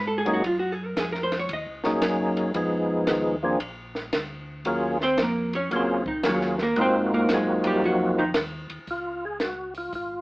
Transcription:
0.00 0.42 G#2 medium
0.07 0.25 A4 medium
0.18 0.31 G#4 medium
0.26 0.42 F#3 medium
0.26 0.42 A#3 medium
0.26 0.42 C#4 medium
0.26 0.43 D#4 medium
0.26 0.43 G#4 medium
0.26 ride soft
0.33 0.43 F#4 medium
0.44 0.95 F#2 medium
0.44 0.59 F4 medium
0.44 kick soft
0.44 ride medium
0.59 0.72 F#4 medium
0.72 0.86 G#4 medium
0.86 0.95 A#4 loud
0.96 1.48 F2 medium
0.96 1.12 G#4 medium
0.96 kick soft
0.96 snare medium
0.96 hi-hat pedal medium
0.96 ride medium
1.12 1.30 A#4 medium
1.12 snare soft
1.23 1.36 C5 medium
1.32 snare soft
1.32 ride medium
1.39 1.49 C#5 medium
1.49 1.66 D#2 medium
1.49 kick soft
1.49 ride medium
1.53 2.53 D#5 medium
1.67 1.84 C#2 medium
1.84 2.01 A#1 medium
1.84 2.51 F#3 medium
1.84 2.51 A#3 medium
1.84 2.52 C#4 medium
1.84 2.52 D#4 medium
1.84 2.52 G#4 medium
1.84 snare medium
2.02 2.53 F#2 medium
2.02 kick soft
2.02 snare medium
2.02 hi-hat pedal medium
2.02 ride medium
2.37 ride soft
2.54 3.06 F2 medium
2.54 3.35 F3 medium
2.54 3.36 G#3 medium
2.54 3.36 B3 medium
2.54 3.36 D#4 medium
2.54 3.37 G#4 medium
2.54 kick soft
2.54 ride medium
3.07 3.59 D#2 loud
3.07 kick soft
3.07 snare medium
3.07 hi-hat pedal medium
3.07 ride medium
3.43 3.59 F3 medium
3.43 3.59 A#3 medium
3.43 3.59 C4 medium
3.43 3.59 D4 medium
3.43 3.60 G#4 medium
3.60 4.11 A#1 medium
3.60 kick soft
3.60 ride medium
3.95 snare soft
4.13 4.64 D2 medium
4.13 kick soft
4.13 snare medium
4.13 hi-hat pedal medium
4.13 ride medium
4.65 5.17 D#2 medium
4.65 4.97 F#3 medium
4.65 4.98 A#3 medium
4.65 4.98 C#4 medium
4.65 4.98 F4 medium
4.65 4.98 G#4 medium
4.65 kick soft
4.65 ride medium
5.01 5.19 C4 loud
5.01 5.19 C5 loud
5.01 snare soft
5.18 5.69 F2 loud
5.18 kick soft
5.18 snare medium
5.18 hi-hat pedal medium
5.18 ride medium
5.22 5.55 A#3 medium
5.22 5.55 A#4 medium
5.53 5.72 C#4 medium
5.53 5.72 C#5 medium
5.53 ride soft
5.71 6.22 C#2 medium
5.71 6.03 F#3 medium
5.71 6.03 A#3 medium
5.71 6.03 C#4 medium
5.71 6.03 F4 medium
5.71 6.04 G#4 medium
5.71 kick soft
5.71 ride medium
5.75 6.07 C4 medium
5.75 6.07 C5 medium
6.06 6.24 D#3 soft
6.06 6.24 D#4 medium
6.06 kick medium
6.23 6.75 D#2 medium
6.23 6.56 F#3 medium
6.23 6.56 A#3 medium
6.23 6.56 C#4 medium
6.23 6.56 F4 medium
6.23 6.57 G#4 medium
6.23 kick soft
6.23 snare medium
6.23 hi-hat pedal medium
6.23 ride medium
6.28 6.60 F#3 medium
6.28 6.60 F#4 medium
6.41 snare soft
6.58 snare soft
6.62 6.78 A#3 medium
6.62 6.78 A#4 medium
6.76 7.27 G#2 medium
6.76 8.24 A#3 medium
6.76 8.24 C4 medium
6.76 8.25 D#4 medium
6.76 8.25 F4 medium
6.76 8.24 F#4 medium
6.76 kick soft
6.76 ride medium
6.81 7.13 C4 medium
6.81 7.13 C5 medium
7.14 7.30 A#3 medium
7.14 7.30 A#4 medium
7.29 7.80 F#2 medium
7.29 kick soft
7.29 snare medium
7.29 hi-hat pedal medium
7.29 ride medium
7.34 7.66 G#3 medium
7.34 7.66 G#4 medium
7.64 7.83 G3 medium
7.64 7.83 G4 medium
7.64 ride medium
7.82 8.33 F2 medium
7.82 8.18 F#4 medium
7.82 kick soft
7.86 8.18 F#3 medium
8.18 8.29 D#3 medium
8.18 8.29 D#4 medium
8.34 8.67 D#2 loud
8.34 kick soft
8.34 snare medium
8.34 hi-hat pedal medium
8.34 ride medium
8.70 8.79 D#2 soft
8.70 ride medium
8.87 9.89 C#2 medium
8.87 9.25 F4 medium
8.87 kick soft
8.87 open hi-hat soft
9.25 9.42 G#4 medium
9.40 9.74 F#4 medium
9.40 snare medium
9.40 closed hi-hat medium
9.75 9.93 F4 medium
9.75 open hi-hat soft
9.93 10.21 G#1 medium
9.93 10.21 F4 medium
9.93 kick soft
9.93 open hi-hat soft

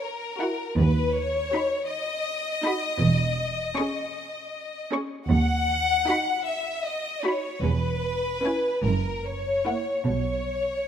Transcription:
0.00 0.76 A#4 soft
0.38 0.67 E4 soft
0.38 0.67 F#4 soft
0.38 0.68 F#5 soft
0.76 1.68 D#2 soft
0.76 1.48 D#2 medium
0.76 1.14 B4 medium
1.14 1.88 C#5 medium
1.52 1.79 D#4 soft
1.52 1.79 F#4 soft
1.52 1.81 B5 soft
1.89 4.88 D#5 medium
2.63 2.90 D#4 soft
2.63 2.90 F#4 medium
2.63 2.92 B5 soft
2.99 3.72 E1 soft
2.99 3.93 E2 medium
3.75 4.05 C#4 soft
3.75 4.05 G#4 soft
3.75 4.04 C#6 soft
4.92 5.20 C#4 soft
4.92 5.20 G#4 soft
4.92 5.20 C#6 soft
5.29 6.02 D#2 medium
5.29 6.23 D#2 medium
5.29 6.41 F#5 medium
6.06 6.35 D#4 soft
6.06 6.35 F#4 soft
6.06 6.36 B5 soft
6.45 6.84 E5 medium
6.85 7.24 D#5 medium
7.24 7.53 D#4 soft
7.24 7.53 F#4 soft
7.24 7.63 C#5 medium
7.24 7.53 B5 soft
7.62 8.40 E1 soft
7.62 8.62 E2 medium
7.62 8.84 B4 medium
8.43 8.73 C#4 soft
8.43 8.73 E4 soft
8.43 8.74 G#5 soft
8.83 9.62 F#1 soft
8.83 9.85 F#2 soft
8.83 9.24 A#4 medium
9.24 10.08 C#5 medium
9.65 9.97 A#3 soft
9.65 9.97 E4 soft
9.65 9.97 F#5 soft
10.08 10.88 B1 soft
10.08 10.88 B2 soft
10.08 10.88 C#5 medium

